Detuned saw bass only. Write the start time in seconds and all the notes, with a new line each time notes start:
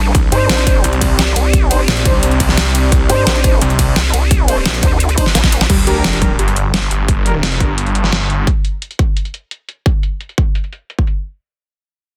0.15 C2
0.84 C2
1.88 A#1
2.05 C2
2.92 C2
3.62 C2
4.66 A#1
5.70 G1
5.87 D2
6.04 F1
6.39 G1
6.91 G1
7.43 F1
7.60 G1